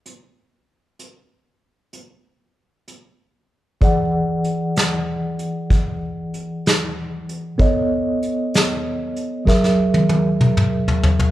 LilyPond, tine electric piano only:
\new Staff \with { instrumentName = "Tine electric piano" } { \time 12/8 \key e \major \tempo 4. = 64 r1. | <e gis' d'' fis''>1. | <b a' cis'' dis''>2. <fis gis' ais' e''>2. | }